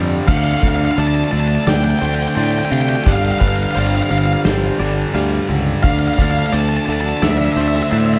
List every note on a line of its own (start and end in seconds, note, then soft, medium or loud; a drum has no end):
0.00 0.18 F2 medium
0.00 0.25 G2 medium
0.00 0.26 D3 medium
0.00 0.28 F3 medium
0.00 3.03 F3 medium
0.00 0.26 G3 loud
0.00 0.27 C4 medium
0.00 8.19 C4 medium
0.00 0.27 D4 loud
0.00 0.27 F4 medium
0.00 0.26 G4 medium
0.00 0.98 D5 medium
0.00 8.19 D5 medium
0.00 0.28 F5 medium
0.27 0.52 D2 loud
0.27 0.62 D3 loud
0.27 0.62 A3 medium
0.27 0.63 D4 loud
0.27 3.04 A4 medium
0.27 0.98 F5 medium
0.27 0.37 F5 loud
0.27 kick loud
0.27 crash loud
0.37 0.44 F5 medium
0.44 0.51 F5 medium
0.52 0.59 F5 medium
0.60 0.87 D2 medium
0.60 0.95 D3 loud
0.60 0.96 A3 medium
0.60 0.97 D4 loud
0.60 0.68 F5 medium
0.60 kick medium
0.68 0.76 F5 medium
0.76 0.84 F5 medium
0.85 0.91 F5 medium
0.91 0.99 F5 medium
0.97 1.22 D2 loud
0.97 1.31 D3 medium
0.97 1.31 A3 loud
0.97 1.33 D4 loud
0.97 1.67 D5 medium
0.97 1.06 A5 loud
0.97 open hi-hat medium
1.07 1.15 A5 medium
1.15 1.23 A5 medium
1.24 1.31 A5 medium
1.31 1.57 D2 medium
1.31 1.66 D3 medium
1.31 1.66 A3 medium
1.31 1.67 D4 medium
1.31 1.39 A5 medium
1.40 1.47 A5 medium
1.48 1.55 A5 medium
1.55 1.63 A5 medium
1.67 1.91 D2 loud
1.67 2.00 D3 loud
1.67 2.01 A3 loud
1.67 2.03 D4 loud
1.67 2.04 D5 loud
1.67 1.75 G5 loud
1.67 snare loud
1.67 open hi-hat medium
1.76 1.83 G5 medium
1.84 1.90 G5 medium
1.91 1.98 G5 medium
1.99 2.26 D2 loud
1.99 2.35 D3 medium
1.99 2.35 A3 loud
1.99 2.37 C5 medium
1.99 2.05 G5 medium
2.03 2.37 D4 loud
2.03 2.13 G5 medium
2.15 2.22 G5 medium
2.23 2.28 G5 medium
2.28 2.35 G5 medium
2.35 2.61 A2 loud
2.35 2.70 D3 medium
2.35 2.71 A3 loud
2.35 2.72 D4 loud
2.35 3.06 C5 medium
2.35 2.43 G5 medium
2.35 open hi-hat medium
2.44 2.50 G5 medium
2.51 2.58 G5 medium
2.59 2.65 G5 loud
2.65 2.72 G5 medium
2.71 2.96 C3 medium
2.71 3.04 D3 medium
2.71 3.04 A3 medium
2.71 5.84 D4 medium
2.71 3.44 F5 medium
2.71 2.81 G5 loud
2.81 2.89 G5 medium
2.89 2.95 G5 medium
2.96 3.03 G5 medium
3.04 3.31 G1 loud
3.04 3.39 G2 medium
3.04 3.40 D3 loud
3.04 8.19 F3 medium
3.04 3.40 G3 loud
3.04 5.81 G4 medium
3.04 3.74 D5 medium
3.04 3.11 G5 medium
3.04 kick loud
3.04 open hi-hat medium
3.08 3.15 F5 medium
3.15 3.23 F5 medium
3.25 3.31 F5 medium
3.31 3.38 F5 medium
3.39 3.65 G1 medium
3.39 3.74 G2 medium
3.39 3.75 D3 medium
3.39 3.75 G3 medium
3.39 3.75 B4 medium
3.39 3.47 F5 medium
3.39 kick medium
3.48 3.56 F5 medium
3.56 3.63 F5 medium
3.63 3.70 F5 medium
3.71 3.78 F5 medium
3.75 4.01 G1 loud
3.75 4.08 G2 loud
3.75 4.09 D3 loud
3.75 4.09 G3 loud
3.75 4.45 C5 medium
3.75 3.86 F5 medium
3.75 open hi-hat medium
3.87 3.95 F5 medium
3.95 4.02 F5 medium
4.03 4.10 F5 medium
4.09 4.35 G1 medium
4.09 4.43 G2 medium
4.09 4.44 D3 medium
4.09 4.44 G3 loud
4.09 4.18 F5 medium
4.18 4.25 F5 medium
4.26 4.33 F5 medium
4.33 4.41 F5 medium
4.44 4.69 G1 loud
4.44 4.78 G2 loud
4.44 4.79 D3 loud
4.44 4.79 G3 loud
4.44 4.79 C5 medium
4.44 snare loud
4.44 open hi-hat medium
4.79 5.04 G1 loud
4.79 5.13 G2 loud
4.79 5.14 D3 loud
4.79 5.14 G3 medium
4.79 6.52 D5 medium
5.14 5.39 D2 loud
5.14 5.47 G2 medium
5.14 5.48 D3 loud
5.14 5.48 G3 loud
5.14 5.83 F5 medium
5.14 open hi-hat medium
5.49 5.73 C#2 medium
5.49 5.81 G2 medium
5.49 5.82 D3 medium
5.49 5.82 G3 loud
5.82 6.08 D2 medium
5.82 6.16 D3 medium
5.82 6.17 A3 loud
5.82 6.18 D4 loud
5.82 8.19 A4 medium
5.82 5.90 F5 loud
5.82 6.52 F5 medium
5.82 kick loud
5.82 open hi-hat medium
5.90 5.98 F5 medium
5.99 6.07 F5 medium
6.08 6.14 F5 medium
6.14 6.52 D3 medium
6.14 6.21 F5 loud
6.19 6.43 D2 loud
6.19 6.52 A3 medium
6.19 6.54 D4 loud
6.19 6.30 F5 medium
6.19 kick medium
6.31 6.38 F5 medium
6.39 6.46 F5 medium
6.46 6.54 F5 medium
6.52 6.77 D2 loud
6.52 6.87 D3 loud
6.52 6.88 A3 loud
6.52 6.88 D4 loud
6.52 7.22 D5 medium
6.52 6.60 A5 loud
6.52 open hi-hat medium
6.60 6.68 A5 medium
6.69 6.76 A5 medium
6.77 6.85 A5 medium
6.86 7.12 D2 loud
6.86 7.21 D3 medium
6.86 7.22 A3 medium
6.86 7.23 D4 medium
6.86 6.92 A5 loud
6.92 7.00 A5 medium
7.01 7.08 A5 medium
7.09 7.17 A5 medium
7.17 7.25 A5 medium
7.22 7.47 D2 loud
7.22 7.56 D3 loud
7.22 7.57 A3 loud
7.22 7.58 D4 loud
7.22 7.60 D5 loud
7.22 7.30 E5 loud
7.22 snare loud
7.22 open hi-hat medium
7.31 7.37 E5 medium
7.38 7.45 E5 medium
7.45 7.52 E5 medium
7.53 7.81 D2 loud
7.53 7.60 E5 medium
7.57 7.90 D3 medium
7.57 7.91 A3 loud
7.57 7.93 D4 loud
7.57 7.92 C5 medium
7.61 7.67 E5 medium
7.68 7.75 E5 medium
7.75 7.82 E5 medium
7.75 snare soft
7.83 7.90 E5 medium
7.91 8.16 A2 loud
7.91 8.19 D3 loud
7.91 8.19 A3 loud
7.91 8.19 D4 loud
7.91 8.19 C5 medium
7.91 7.98 E5 medium
7.91 open hi-hat medium
7.98 8.05 E5 medium
8.06 8.13 E5 medium
8.14 8.19 E5 medium